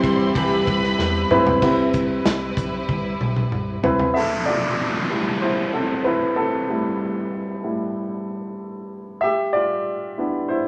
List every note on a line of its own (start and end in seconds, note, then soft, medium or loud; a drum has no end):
0.00 0.30 C2 medium
0.00 1.63 C3 medium
0.00 0.35 E3 medium
0.00 1.58 G3 medium
0.00 0.32 C4 medium
0.00 1.31 C4 medium
0.00 1.59 C4 medium
0.00 1.31 E4 medium
0.00 1.58 E4 medium
0.00 0.54 G4 medium
0.00 1.64 A4 loud
0.00 1.31 B4 loud
0.00 0.35 B4 medium
0.00 0.32 C6 medium
0.00 kick loud
0.04 0.35 G3 soft
0.04 0.35 C4 medium
0.04 0.36 G4 medium
0.04 ride medium
0.35 0.61 C2 loud
0.35 0.67 C3 medium
0.35 0.67 E3 medium
0.35 0.67 G3 medium
0.35 0.67 C4 medium
0.35 0.66 G4 medium
0.35 1.60 B4 medium
0.35 0.65 B4 loud
0.35 1.60 B5 medium
0.35 kick medium
0.35 ride medium
0.66 0.93 C2 loud
0.66 0.97 G3 soft
0.66 0.98 C4 medium
0.66 0.98 G4 soft
0.66 0.98 B4 medium
0.66 kick medium
0.66 ride medium
0.83 snare soft
0.98 1.25 E2 medium
0.98 1.30 G3 medium
0.98 1.31 C4 medium
0.98 1.30 G4 medium
0.98 1.29 B4 medium
0.98 snare medium
1.30 1.56 B1 medium
1.30 1.63 G3 soft
1.30 1.55 C4 medium
1.30 1.63 C4 soft
1.30 1.55 E4 medium
1.30 1.62 G4 medium
1.30 1.62 B4 medium
1.30 1.55 B4 medium
1.30 mid tom medium
1.47 floor tom medium
1.62 1.88 C2 loud
1.62 2.53 C3 medium
1.62 4.13 G3 medium
1.62 4.13 C4 medium
1.62 2.60 C4 medium
1.62 4.13 E4 medium
1.62 2.59 E4 medium
1.62 4.13 B4 medium
1.62 2.60 B4 medium
1.62 kick medium
1.62 crash medium
1.94 2.20 C2 loud
1.94 kick medium
1.94 closed hi-hat medium
2.26 2.52 C2 loud
2.26 snare loud
2.26 closed hi-hat medium
2.57 2.83 B1 medium
2.57 kick medium
2.57 closed hi-hat medium
2.89 3.15 C2 medium
2.89 kick medium
2.89 high tom soft
3.21 3.46 B1 medium
3.21 mid tom medium
3.36 mid tom medium
3.52 3.78 C2 medium
3.52 mid tom medium
3.83 4.10 C2 medium
3.83 4.08 C4 medium
3.83 4.08 E4 medium
3.83 4.08 B4 medium
3.83 floor tom medium
3.99 floor tom medium
4.14 4.45 A4 medium
4.14 4.47 E5 medium
4.14 downlifter medium
4.45 5.07 F4 medium
4.45 5.06 D5 medium
5.10 5.52 G3 soft
5.10 5.53 A3 soft
5.10 5.42 E4 soft
5.41 5.72 E4 medium
5.41 5.71 C5 medium
5.74 6.04 C4 medium
5.74 6.06 A4 medium
6.04 6.14 E4 medium
6.04 6.12 B4 medium
6.36 8.24 C4 soft
6.36 8.23 A4 medium
6.69 7.62 G3 soft
6.69 7.62 A3 soft
6.69 7.63 E4 soft
7.63 7.92 G3 soft
7.63 7.93 A3 soft
7.63 7.93 E4 soft
9.21 9.53 G4 medium
9.21 9.51 E5 medium
9.53 10.46 F4 medium
9.53 10.45 D5 medium
10.18 10.60 B3 soft
10.18 10.61 D4 soft
10.18 10.49 E4 soft
10.48 10.68 E4 medium
10.48 10.68 C5 medium